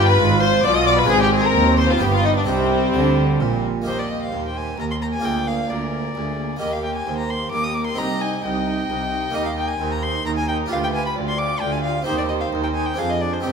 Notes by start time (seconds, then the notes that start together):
Already playing: G1 G2 B3 D4 F4
0.07 B4 B5
0.19 G#1 G#2
0.40 C5 C6
0.63 B1 B2 F4 D5 D6
0.75 D#5 D#6
0.86 D5 D6
0.98 B4 B5
1.04 G#3 C4 D#4
1.09 G#1 G#2 C4 G#4 G#5
1.21 G4 G5
1.33 G#4 G#5
1.44 A#4 A#5
1.55 D#2
1.78 C5 C6
1.89 F4 F5
1.97 G1 G2 B3 D4 G4
2.01 G2 G4 G5
2.13 F4 F5
2.23 D#4 D#5
2.35 D4 D5
2.44 C2 C3 G3 C4 D#4 G4 C5
2.48 C3 C4
2.94 D2 D3
3.40 A#1 A#2
3.82 A#3 D#4 G4
3.86 D#2 A#3 G4 C5 D#5
3.99 D5
4.09 A#3 G4 D#5
4.22 F5
4.32 D#2 A#3 G4 C5
4.46 G5
4.55 A#3 G4 G#5
4.78 D#2 A#3 G4 A#4 A#5
4.91 C6
5.00 A#3 G4 A#5
5.13 G#5
5.20 A#3 F4 G#4
5.24 D2 A#3 G#4 D5 G5
5.47 A#3 G#4 F5
5.70 D2 A#3 G#4 A#4 D5
5.93 A#3 G#4
6.15 D2 A#3 G#4
6.38 A#3 G#4
6.57 A#3 D#4 G4 D#5
6.61 D#2 A#3 G4
6.73 F5
6.84 A#3 G4 G5
6.95 G#5
7.07 D#2 A#3 G4 C5
7.18 A#5
7.30 A#3 G4 C6
7.51 D#2 A#3 G4 A#4 D6
7.64 D#6
7.74 A#3 G4 D6
7.87 C6
7.94 C2 C4 D#4 G4 D#5 A#5
7.98 C2 D#4 G4
8.21 D#4 G4 G#5
8.44 C2 D#4 G4 D#5 G5
8.67 D#4 G4
8.89 C2 D#4 G4
9.12 D#4 G4
9.30 A#3 D#4 G4
9.35 D#2 D#4 G4 D#5
9.46 F5
9.57 D#4 G4 G5
9.68 G#5
9.80 D#2 D#4 G4 C5
9.92 A#5
10.02 D#4 G4 C6
10.24 D#2 D#4 G4 A#4 A#5
10.37 G#5
10.48 D#4 G4 G5
10.66 D4 F4 G4
10.70 D2 F4 G4 B4 F5
10.84 G5
10.94 F4 G4 G#5
11.06 B5
11.15 D2 F4 G4 D5
11.29 C6
11.39 F4 G4 D6
11.61 D2 F4 G4 G5
11.72 G#5
11.83 F4 G4 F5
12.02 C4 D#4 G4 C5
12.07 D#2 D#4 G4
12.18 D5
12.29 D#4 G4 D#5
12.41 F5
12.52 D#2 D#4 G4
12.64 G5
12.75 D#4 G4 G#5
12.87 G5
12.94 C4 D4 G#4
12.98 F2 D4 G#4 F5
13.10 D#5
13.21 D4 G#4 D5
13.34 C5
13.40 C4 D#4 G4
13.45 G2 C4 D#4